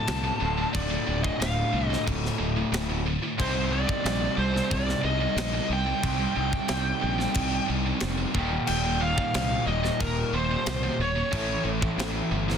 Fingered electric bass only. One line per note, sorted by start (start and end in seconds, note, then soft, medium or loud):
0.08 0.30 C2 medium
0.42 0.64 D1 medium
0.75 0.97 D1 loud
1.08 1.30 D1 medium
1.41 1.63 D1 loud
1.73 1.95 C2 medium
2.08 2.29 D1 loud
2.40 2.62 D1 medium
2.73 3.17 D1 medium
3.40 3.84 C2 medium
4.05 4.27 A#1 medium
4.38 4.60 C2 loud
4.72 4.94 C2 loud
5.04 5.26 C2 medium
5.36 5.59 A#1 medium
5.70 5.92 C2 medium
6.04 6.26 C2 loud
6.37 6.59 C2 medium
6.70 6.92 C2 medium
7.04 7.25 A#1 medium
7.36 7.58 C2 loud
7.70 7.92 C2 medium
8.02 8.24 F1 medium
8.35 8.57 D#1 medium
8.69 9.13 D#1 medium
9.35 9.57 C2 medium
9.67 9.89 D#1 loud
10.01 10.23 D#1 loud
10.33 10.55 D#1 medium
10.67 10.89 C2 medium
10.99 11.22 D#1 medium
11.33 11.55 A1 loud
11.65 11.87 A1 medium
11.98 12.20 A1 loud
12.31 12.54 G1 loud